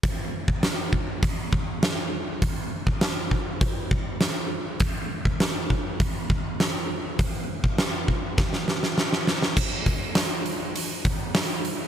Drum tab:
CC |----------------|----------------|----------------|----------------|
HH |o---o---o---o---|o---o---o---o---|o---o---o---o---|o---o-----------|
SD |----o-------o---|----o-------o---|----o-------o---|----o---oooooooo|
BD |o--o--o-o-o-----|o--o--o-o-o-----|o--o--o-o-o-----|o--o--o-o-------|

CC |x---------------|
HH |--o-o-o-o-o-o-o-|
SD |----o-------o---|
BD |o-o-------o-----|